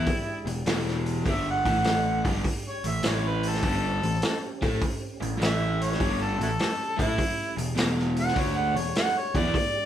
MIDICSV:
0, 0, Header, 1, 6, 480
1, 0, Start_track
1, 0, Tempo, 591716
1, 57, Time_signature, 4, 2, 24, 8
1, 7994, End_track
2, 0, Start_track
2, 0, Title_t, "Harmonica"
2, 0, Program_c, 0, 22
2, 0, Note_on_c, 0, 64, 105
2, 526, Note_off_c, 0, 64, 0
2, 1051, Note_on_c, 0, 76, 97
2, 1192, Note_off_c, 0, 76, 0
2, 1219, Note_on_c, 0, 78, 109
2, 1826, Note_off_c, 0, 78, 0
2, 2175, Note_on_c, 0, 73, 86
2, 2335, Note_on_c, 0, 76, 87
2, 2347, Note_off_c, 0, 73, 0
2, 2501, Note_on_c, 0, 73, 85
2, 2514, Note_off_c, 0, 76, 0
2, 2660, Note_on_c, 0, 71, 88
2, 2672, Note_off_c, 0, 73, 0
2, 2827, Note_on_c, 0, 69, 102
2, 2839, Note_off_c, 0, 71, 0
2, 3739, Note_off_c, 0, 69, 0
2, 4409, Note_on_c, 0, 76, 103
2, 4733, Note_on_c, 0, 73, 91
2, 4745, Note_off_c, 0, 76, 0
2, 5055, Note_on_c, 0, 69, 90
2, 5067, Note_off_c, 0, 73, 0
2, 5196, Note_off_c, 0, 69, 0
2, 5209, Note_on_c, 0, 64, 67
2, 5209, Note_on_c, 0, 66, 67
2, 5209, Note_on_c, 0, 69, 96
2, 5269, Note_off_c, 0, 66, 0
2, 5272, Note_off_c, 0, 64, 0
2, 5663, Note_off_c, 0, 69, 0
2, 5678, Note_on_c, 0, 64, 114
2, 6137, Note_off_c, 0, 64, 0
2, 6649, Note_on_c, 0, 78, 113
2, 6804, Note_on_c, 0, 73, 97
2, 6817, Note_off_c, 0, 78, 0
2, 6955, Note_on_c, 0, 78, 104
2, 6968, Note_off_c, 0, 73, 0
2, 7113, Note_on_c, 0, 73, 90
2, 7125, Note_off_c, 0, 78, 0
2, 7263, Note_off_c, 0, 73, 0
2, 7277, Note_on_c, 0, 78, 111
2, 7448, Note_on_c, 0, 73, 98
2, 7460, Note_off_c, 0, 78, 0
2, 7607, Note_on_c, 0, 74, 123
2, 7619, Note_off_c, 0, 73, 0
2, 7994, Note_off_c, 0, 74, 0
2, 7994, End_track
3, 0, Start_track
3, 0, Title_t, "Tonewheel organ"
3, 0, Program_c, 1, 16
3, 18, Note_on_c, 1, 67, 65
3, 22, Note_on_c, 1, 62, 64
3, 25, Note_on_c, 1, 56, 63
3, 1312, Note_off_c, 1, 67, 0
3, 1314, Note_off_c, 1, 62, 0
3, 1315, Note_off_c, 1, 56, 0
3, 1350, Note_on_c, 1, 64, 68
3, 1351, Note_on_c, 1, 57, 71
3, 1351, Note_on_c, 1, 69, 71
3, 1822, Note_on_c, 1, 56, 63
3, 1822, Note_on_c, 1, 62, 64
3, 1824, Note_off_c, 1, 57, 0
3, 1824, Note_off_c, 1, 64, 0
3, 1824, Note_off_c, 1, 69, 0
3, 2288, Note_on_c, 1, 60, 67
3, 2291, Note_on_c, 1, 67, 65
3, 2300, Note_off_c, 1, 56, 0
3, 2300, Note_off_c, 1, 62, 0
3, 2301, Note_on_c, 1, 61, 66
3, 4201, Note_off_c, 1, 60, 0
3, 4202, Note_off_c, 1, 67, 0
3, 4207, Note_off_c, 1, 61, 0
3, 4229, Note_on_c, 1, 56, 62
3, 4231, Note_on_c, 1, 61, 62
3, 4236, Note_on_c, 1, 62, 67
3, 4334, Note_off_c, 1, 56, 0
3, 4334, Note_off_c, 1, 61, 0
3, 4337, Note_off_c, 1, 62, 0
3, 4339, Note_on_c, 1, 57, 78
3, 4344, Note_on_c, 1, 61, 74
3, 4349, Note_on_c, 1, 55, 74
3, 6133, Note_off_c, 1, 57, 0
3, 6136, Note_off_c, 1, 61, 0
3, 6137, Note_on_c, 1, 62, 73
3, 6137, Note_on_c, 1, 67, 71
3, 6138, Note_off_c, 1, 55, 0
3, 6151, Note_on_c, 1, 56, 69
3, 7994, Note_off_c, 1, 56, 0
3, 7994, Note_off_c, 1, 62, 0
3, 7994, Note_off_c, 1, 67, 0
3, 7994, End_track
4, 0, Start_track
4, 0, Title_t, "Overdriven electric guitar"
4, 0, Program_c, 2, 29
4, 373, Note_on_c, 2, 40, 58
4, 373, Note_on_c, 2, 47, 60
4, 503, Note_off_c, 2, 40, 0
4, 503, Note_off_c, 2, 47, 0
4, 537, Note_on_c, 2, 40, 86
4, 538, Note_on_c, 2, 47, 88
4, 544, Note_on_c, 2, 52, 94
4, 1004, Note_off_c, 2, 40, 0
4, 1007, Note_on_c, 2, 43, 81
4, 1010, Note_off_c, 2, 47, 0
4, 1013, Note_on_c, 2, 50, 80
4, 1014, Note_off_c, 2, 52, 0
4, 1018, Note_on_c, 2, 55, 85
4, 1328, Note_off_c, 2, 43, 0
4, 1331, Note_off_c, 2, 50, 0
4, 1334, Note_off_c, 2, 55, 0
4, 1341, Note_on_c, 2, 45, 85
4, 1341, Note_on_c, 2, 52, 90
4, 1349, Note_on_c, 2, 57, 88
4, 1814, Note_off_c, 2, 45, 0
4, 1814, Note_off_c, 2, 52, 0
4, 1815, Note_on_c, 2, 43, 90
4, 1818, Note_off_c, 2, 57, 0
4, 1821, Note_on_c, 2, 50, 89
4, 1830, Note_on_c, 2, 55, 99
4, 1973, Note_off_c, 2, 43, 0
4, 1975, Note_off_c, 2, 50, 0
4, 1980, Note_off_c, 2, 55, 0
4, 2310, Note_on_c, 2, 45, 53
4, 2311, Note_on_c, 2, 52, 61
4, 2434, Note_off_c, 2, 45, 0
4, 2434, Note_off_c, 2, 52, 0
4, 2454, Note_on_c, 2, 45, 82
4, 2461, Note_on_c, 2, 52, 87
4, 2467, Note_on_c, 2, 57, 102
4, 2935, Note_off_c, 2, 45, 0
4, 2939, Note_off_c, 2, 52, 0
4, 2941, Note_off_c, 2, 57, 0
4, 2943, Note_on_c, 2, 43, 84
4, 2949, Note_on_c, 2, 50, 91
4, 2952, Note_on_c, 2, 55, 93
4, 3258, Note_off_c, 2, 43, 0
4, 3260, Note_off_c, 2, 55, 0
4, 3261, Note_off_c, 2, 50, 0
4, 3263, Note_on_c, 2, 52, 64
4, 3265, Note_on_c, 2, 45, 65
4, 3391, Note_off_c, 2, 52, 0
4, 3392, Note_off_c, 2, 45, 0
4, 3743, Note_on_c, 2, 57, 90
4, 3748, Note_on_c, 2, 64, 98
4, 3754, Note_on_c, 2, 69, 101
4, 3898, Note_off_c, 2, 57, 0
4, 3900, Note_off_c, 2, 64, 0
4, 3903, Note_off_c, 2, 69, 0
4, 4222, Note_on_c, 2, 45, 65
4, 4224, Note_on_c, 2, 52, 67
4, 4351, Note_off_c, 2, 45, 0
4, 4352, Note_off_c, 2, 52, 0
4, 4360, Note_on_c, 2, 45, 82
4, 4365, Note_on_c, 2, 52, 101
4, 4373, Note_on_c, 2, 57, 96
4, 4849, Note_off_c, 2, 45, 0
4, 4851, Note_off_c, 2, 52, 0
4, 4855, Note_off_c, 2, 57, 0
4, 4859, Note_on_c, 2, 43, 78
4, 4868, Note_on_c, 2, 50, 89
4, 4868, Note_on_c, 2, 55, 103
4, 5175, Note_off_c, 2, 55, 0
4, 5176, Note_off_c, 2, 43, 0
4, 5178, Note_on_c, 2, 52, 76
4, 5180, Note_off_c, 2, 50, 0
4, 5184, Note_on_c, 2, 45, 64
4, 5309, Note_off_c, 2, 52, 0
4, 5312, Note_off_c, 2, 45, 0
4, 5655, Note_on_c, 2, 57, 96
4, 5664, Note_on_c, 2, 64, 104
4, 5667, Note_on_c, 2, 69, 102
4, 5813, Note_off_c, 2, 57, 0
4, 5818, Note_off_c, 2, 64, 0
4, 5820, Note_off_c, 2, 69, 0
4, 6137, Note_on_c, 2, 40, 60
4, 6142, Note_on_c, 2, 47, 65
4, 6268, Note_off_c, 2, 40, 0
4, 6270, Note_off_c, 2, 47, 0
4, 6285, Note_on_c, 2, 40, 82
4, 6291, Note_on_c, 2, 47, 78
4, 6293, Note_on_c, 2, 52, 87
4, 6768, Note_off_c, 2, 47, 0
4, 6769, Note_off_c, 2, 40, 0
4, 6771, Note_off_c, 2, 52, 0
4, 6771, Note_on_c, 2, 50, 86
4, 6775, Note_on_c, 2, 57, 86
4, 6777, Note_on_c, 2, 62, 93
4, 7090, Note_off_c, 2, 50, 0
4, 7092, Note_off_c, 2, 57, 0
4, 7093, Note_off_c, 2, 62, 0
4, 7104, Note_on_c, 2, 40, 72
4, 7104, Note_on_c, 2, 47, 69
4, 7230, Note_off_c, 2, 40, 0
4, 7230, Note_off_c, 2, 47, 0
4, 7587, Note_on_c, 2, 52, 88
4, 7590, Note_on_c, 2, 59, 89
4, 7593, Note_on_c, 2, 64, 113
4, 7737, Note_off_c, 2, 52, 0
4, 7739, Note_off_c, 2, 59, 0
4, 7740, Note_off_c, 2, 64, 0
4, 7994, End_track
5, 0, Start_track
5, 0, Title_t, "Picked electric bass"
5, 0, Program_c, 3, 34
5, 366, Note_on_c, 3, 28, 70
5, 519, Note_off_c, 3, 28, 0
5, 533, Note_on_c, 3, 28, 98
5, 985, Note_off_c, 3, 28, 0
5, 1017, Note_on_c, 3, 31, 94
5, 1320, Note_off_c, 3, 31, 0
5, 1338, Note_on_c, 3, 33, 93
5, 1790, Note_off_c, 3, 33, 0
5, 1822, Note_on_c, 3, 31, 102
5, 1969, Note_off_c, 3, 31, 0
5, 2305, Note_on_c, 3, 33, 77
5, 2452, Note_off_c, 3, 33, 0
5, 2456, Note_on_c, 3, 33, 96
5, 2908, Note_off_c, 3, 33, 0
5, 2941, Note_on_c, 3, 31, 93
5, 3244, Note_off_c, 3, 31, 0
5, 3264, Note_on_c, 3, 33, 76
5, 3412, Note_off_c, 3, 33, 0
5, 3751, Note_on_c, 3, 45, 101
5, 3896, Note_off_c, 3, 45, 0
5, 4232, Note_on_c, 3, 33, 75
5, 4377, Note_off_c, 3, 33, 0
5, 4381, Note_on_c, 3, 33, 98
5, 4831, Note_off_c, 3, 33, 0
5, 4869, Note_on_c, 3, 31, 103
5, 5169, Note_off_c, 3, 31, 0
5, 5178, Note_on_c, 3, 33, 83
5, 5329, Note_off_c, 3, 33, 0
5, 5668, Note_on_c, 3, 45, 93
5, 5814, Note_off_c, 3, 45, 0
5, 6142, Note_on_c, 3, 28, 79
5, 6291, Note_off_c, 3, 28, 0
5, 6295, Note_on_c, 3, 28, 97
5, 6746, Note_off_c, 3, 28, 0
5, 6782, Note_on_c, 3, 38, 93
5, 7083, Note_off_c, 3, 38, 0
5, 7090, Note_on_c, 3, 28, 84
5, 7243, Note_off_c, 3, 28, 0
5, 7581, Note_on_c, 3, 40, 103
5, 7727, Note_off_c, 3, 40, 0
5, 7994, End_track
6, 0, Start_track
6, 0, Title_t, "Drums"
6, 52, Note_on_c, 9, 46, 75
6, 55, Note_on_c, 9, 36, 113
6, 133, Note_off_c, 9, 46, 0
6, 136, Note_off_c, 9, 36, 0
6, 380, Note_on_c, 9, 46, 55
6, 461, Note_off_c, 9, 46, 0
6, 536, Note_on_c, 9, 46, 81
6, 545, Note_on_c, 9, 38, 111
6, 617, Note_off_c, 9, 46, 0
6, 626, Note_off_c, 9, 38, 0
6, 709, Note_on_c, 9, 38, 33
6, 790, Note_off_c, 9, 38, 0
6, 859, Note_on_c, 9, 46, 55
6, 941, Note_off_c, 9, 46, 0
6, 1019, Note_on_c, 9, 36, 97
6, 1020, Note_on_c, 9, 46, 70
6, 1100, Note_off_c, 9, 36, 0
6, 1101, Note_off_c, 9, 46, 0
6, 1342, Note_on_c, 9, 46, 56
6, 1343, Note_on_c, 9, 36, 94
6, 1423, Note_off_c, 9, 46, 0
6, 1424, Note_off_c, 9, 36, 0
6, 1495, Note_on_c, 9, 46, 81
6, 1504, Note_on_c, 9, 38, 97
6, 1576, Note_off_c, 9, 46, 0
6, 1585, Note_off_c, 9, 38, 0
6, 1824, Note_on_c, 9, 36, 104
6, 1824, Note_on_c, 9, 46, 59
6, 1905, Note_off_c, 9, 36, 0
6, 1905, Note_off_c, 9, 46, 0
6, 1982, Note_on_c, 9, 36, 104
6, 1984, Note_on_c, 9, 46, 82
6, 2064, Note_off_c, 9, 36, 0
6, 2065, Note_off_c, 9, 46, 0
6, 2303, Note_on_c, 9, 46, 63
6, 2385, Note_off_c, 9, 46, 0
6, 2456, Note_on_c, 9, 46, 86
6, 2465, Note_on_c, 9, 38, 116
6, 2537, Note_off_c, 9, 46, 0
6, 2546, Note_off_c, 9, 38, 0
6, 2784, Note_on_c, 9, 46, 58
6, 2865, Note_off_c, 9, 46, 0
6, 2868, Note_on_c, 9, 38, 34
6, 2941, Note_on_c, 9, 46, 78
6, 2944, Note_on_c, 9, 36, 102
6, 2949, Note_off_c, 9, 38, 0
6, 3022, Note_off_c, 9, 46, 0
6, 3026, Note_off_c, 9, 36, 0
6, 3270, Note_on_c, 9, 46, 56
6, 3351, Note_off_c, 9, 46, 0
6, 3422, Note_on_c, 9, 46, 72
6, 3431, Note_on_c, 9, 38, 112
6, 3503, Note_off_c, 9, 46, 0
6, 3512, Note_off_c, 9, 38, 0
6, 3750, Note_on_c, 9, 36, 107
6, 3751, Note_on_c, 9, 46, 57
6, 3831, Note_off_c, 9, 36, 0
6, 3832, Note_off_c, 9, 46, 0
6, 3905, Note_on_c, 9, 46, 80
6, 3907, Note_on_c, 9, 36, 106
6, 3986, Note_off_c, 9, 46, 0
6, 3988, Note_off_c, 9, 36, 0
6, 4235, Note_on_c, 9, 46, 50
6, 4316, Note_off_c, 9, 46, 0
6, 4393, Note_on_c, 9, 46, 81
6, 4402, Note_on_c, 9, 38, 109
6, 4474, Note_off_c, 9, 46, 0
6, 4483, Note_off_c, 9, 38, 0
6, 4717, Note_on_c, 9, 46, 59
6, 4798, Note_off_c, 9, 46, 0
6, 4801, Note_on_c, 9, 38, 36
6, 4867, Note_on_c, 9, 46, 75
6, 4869, Note_on_c, 9, 36, 109
6, 4882, Note_off_c, 9, 38, 0
6, 4948, Note_off_c, 9, 46, 0
6, 4950, Note_off_c, 9, 36, 0
6, 5199, Note_on_c, 9, 46, 55
6, 5280, Note_off_c, 9, 46, 0
6, 5348, Note_on_c, 9, 46, 74
6, 5357, Note_on_c, 9, 38, 101
6, 5429, Note_off_c, 9, 46, 0
6, 5438, Note_off_c, 9, 38, 0
6, 5671, Note_on_c, 9, 36, 98
6, 5672, Note_on_c, 9, 46, 58
6, 5752, Note_off_c, 9, 36, 0
6, 5753, Note_off_c, 9, 46, 0
6, 5827, Note_on_c, 9, 36, 108
6, 5829, Note_on_c, 9, 46, 81
6, 5908, Note_off_c, 9, 36, 0
6, 5910, Note_off_c, 9, 46, 0
6, 6150, Note_on_c, 9, 46, 62
6, 6232, Note_off_c, 9, 46, 0
6, 6305, Note_on_c, 9, 46, 88
6, 6314, Note_on_c, 9, 38, 121
6, 6386, Note_off_c, 9, 46, 0
6, 6395, Note_off_c, 9, 38, 0
6, 6479, Note_on_c, 9, 38, 32
6, 6560, Note_off_c, 9, 38, 0
6, 6623, Note_on_c, 9, 46, 59
6, 6704, Note_off_c, 9, 46, 0
6, 6712, Note_on_c, 9, 38, 34
6, 6782, Note_on_c, 9, 36, 101
6, 6782, Note_on_c, 9, 46, 72
6, 6793, Note_off_c, 9, 38, 0
6, 6863, Note_off_c, 9, 46, 0
6, 6864, Note_off_c, 9, 36, 0
6, 7109, Note_on_c, 9, 46, 60
6, 7190, Note_off_c, 9, 46, 0
6, 7263, Note_on_c, 9, 46, 73
6, 7272, Note_on_c, 9, 38, 112
6, 7344, Note_off_c, 9, 46, 0
6, 7353, Note_off_c, 9, 38, 0
6, 7582, Note_on_c, 9, 36, 102
6, 7582, Note_on_c, 9, 46, 54
6, 7663, Note_off_c, 9, 36, 0
6, 7663, Note_off_c, 9, 46, 0
6, 7740, Note_on_c, 9, 36, 103
6, 7747, Note_on_c, 9, 46, 77
6, 7821, Note_off_c, 9, 36, 0
6, 7828, Note_off_c, 9, 46, 0
6, 7994, End_track
0, 0, End_of_file